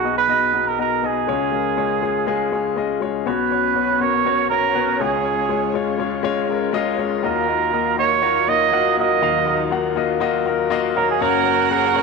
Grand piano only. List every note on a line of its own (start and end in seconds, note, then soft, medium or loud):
0.00 1.24 B1 medium
0.00 1.24 B2 medium
0.00 0.04 B3 medium
0.00 0.26 B3 medium
0.00 0.04 D#4 medium
0.00 0.05 F#4 medium
0.00 1.30 G#4 medium
0.00 0.05 D#5 loud
0.04 0.26 D#4 medium
0.04 0.27 F#4 medium
0.04 0.27 D#5 medium
0.28 0.51 B3 medium
0.28 0.51 D#4 medium
0.28 0.51 F#4 medium
0.28 0.51 D#5 medium
0.54 0.76 B3 medium
0.54 0.76 D#4 medium
0.54 0.76 F#4 medium
0.54 0.76 B4 medium
0.78 1.01 B3 medium
0.78 1.01 D#4 medium
0.78 1.01 F#4 medium
0.78 1.01 D#5 medium
1.03 1.25 B3 medium
1.03 1.25 D#4 medium
1.03 1.26 F#4 medium
1.03 1.26 D#5 medium
1.27 3.23 C#2 soft
1.27 3.23 C#3 medium
1.27 1.50 G#3 medium
1.27 1.50 C#4 medium
1.27 1.50 F4 medium
1.27 1.51 C#5 medium
1.52 1.75 G#3 medium
1.52 1.75 C#4 medium
1.52 1.75 F4 medium
1.52 1.76 A#4 medium
1.77 2.00 G#3 medium
1.77 2.00 C#4 medium
1.77 2.00 F4 medium
1.77 2.00 C#5 medium
2.01 2.24 G#3 medium
2.01 2.25 C#4 medium
2.01 2.25 F4 medium
2.01 2.25 G#4 medium
2.27 2.49 G#3 medium
2.27 2.50 C#4 medium
2.27 2.50 F4 medium
2.27 2.50 G#4 loud
2.52 2.74 G#3 medium
2.52 2.74 C#4 medium
2.52 2.75 F4 medium
2.52 2.75 C#5 medium
2.76 2.99 G#3 medium
2.76 2.99 C#4 medium
2.76 2.99 F4 medium
2.76 3.00 D#5 medium
3.01 3.24 G#3 medium
3.01 3.24 C#4 medium
3.01 3.24 F4 medium
3.01 3.24 C#5 medium
3.26 4.96 B1 medium
3.26 4.96 B2 soft
3.26 3.48 B3 medium
3.26 3.49 C#4 medium
3.26 3.49 F#4 medium
3.26 3.49 C#5 medium
3.50 3.73 B3 medium
3.50 3.74 C#4 medium
3.50 3.74 F#4 medium
3.50 3.74 C#5 medium
3.75 3.98 B3 medium
3.75 3.98 C#4 medium
3.75 3.98 F#4 medium
3.75 3.99 C#5 medium
4.00 4.23 B3 medium
4.00 4.23 C#4 medium
4.00 4.23 F#4 medium
4.00 4.24 A#4 medium
4.25 4.48 B3 medium
4.25 4.48 C#4 medium
4.25 4.48 F#4 medium
4.25 4.49 C#5 medium
4.50 4.73 B3 medium
4.50 4.73 C#4 medium
4.50 4.73 F#4 medium
4.50 4.73 C#5 medium
4.75 4.97 B3 medium
4.75 4.98 C#4 medium
4.75 4.98 F#4 medium
4.75 4.98 B4 medium
5.00 6.95 C#2 medium
5.00 6.95 C#3 medium
5.00 5.45 G#3 medium
5.00 5.45 C#4 medium
5.00 5.45 F4 medium
5.00 5.46 C#5 medium
5.49 5.72 G#3 medium
5.49 5.72 C#4 medium
5.49 5.72 F4 medium
5.49 5.72 C#5 medium
5.74 5.97 G#3 medium
5.74 5.97 C#4 medium
5.74 5.97 F4 medium
5.74 5.97 C#5 medium
5.98 6.21 G#3 medium
5.98 6.21 C#4 medium
5.98 6.22 F4 medium
5.98 6.22 C#5 medium
6.23 6.46 G#3 loud
6.23 6.46 C#4 medium
6.23 6.47 F4 medium
6.23 6.47 C#5 loud
6.48 6.71 G#3 medium
6.48 6.72 C#4 medium
6.48 6.72 F4 medium
6.48 6.72 A#4 medium
6.73 6.96 G#3 loud
6.73 6.96 C#4 loud
6.73 6.96 F4 loud
6.73 6.96 D#5 loud
6.98 7.21 G#3 medium
6.98 7.21 C#4 medium
6.98 7.21 F4 medium
6.98 7.21 C#5 medium
7.23 9.18 D#2 medium
7.23 9.18 D#3 medium
7.23 7.46 A#3 medium
7.23 7.46 F4 medium
7.23 7.46 F#4 medium
7.23 7.46 D#5 medium
7.47 7.70 A#3 medium
7.47 7.70 F4 medium
7.47 7.71 F#4 medium
7.47 7.71 D#5 medium
7.73 7.95 A#3 medium
7.73 7.96 F4 medium
7.73 7.96 F#4 medium
7.73 7.96 D#5 medium
7.97 8.20 A#3 medium
7.97 8.20 F4 medium
7.97 8.21 F#4 medium
7.97 8.21 D#5 medium
8.22 8.45 A#3 medium
8.22 8.45 F4 medium
8.22 8.45 F#4 medium
8.22 8.45 C#5 medium
8.47 8.70 A#3 medium
8.47 8.70 F4 medium
8.47 8.70 F#4 medium
8.47 8.70 D#5 medium
8.72 8.95 A#3 medium
8.72 8.95 F4 medium
8.72 8.95 F#4 medium
8.72 8.95 F#5 loud
8.97 9.19 A#3 medium
8.97 9.20 F4 medium
8.97 9.20 F#4 medium
8.97 9.20 A#4 medium
9.21 11.17 D#2 medium
9.21 11.17 D#3 medium
9.21 9.44 A#3 medium
9.21 9.45 F4 medium
9.21 9.45 F#4 medium
9.21 9.45 F5 loud
9.46 9.69 A#3 medium
9.46 9.69 F4 medium
9.46 9.69 F#4 medium
9.46 9.70 D#5 medium
9.71 9.94 A#3 medium
9.71 9.94 F4 medium
9.71 9.94 F#4 medium
9.71 9.94 F#5 medium
9.96 10.19 A#3 medium
9.96 10.19 F4 medium
9.96 10.19 F#4 medium
9.96 10.19 D#5 medium
10.20 10.43 A#3 loud
10.20 10.44 F4 loud
10.20 10.44 F#4 medium
10.20 10.44 D#5 loud
10.46 10.68 A#3 medium
10.46 10.69 F4 medium
10.46 10.69 F#4 medium
10.46 10.69 A#4 medium
10.70 10.93 A#3 loud
10.70 10.93 F4 loud
10.70 10.94 F#4 loud
10.70 10.94 D#5 loud
10.95 11.18 A#3 medium
10.95 11.18 F4 medium
10.95 11.18 F#4 medium
10.95 11.19 C#5 medium
11.20 12.03 F#1 medium
11.20 12.03 F#2 medium
11.20 11.43 A#3 medium
11.20 11.43 C#4 medium
11.20 11.43 F#4 medium
11.20 11.44 C#5 loud
11.45 11.67 A#3 medium
11.45 11.68 C#4 medium
11.45 11.68 F#4 medium
11.45 11.68 C#5 medium
11.70 11.93 A#3 medium
11.70 11.93 C#4 medium
11.70 11.93 F#4 medium
11.70 11.93 G#4 medium
11.95 12.03 A#3 medium
11.95 12.03 C#4 medium
11.95 12.03 F#4 medium
11.95 12.03 C#5 medium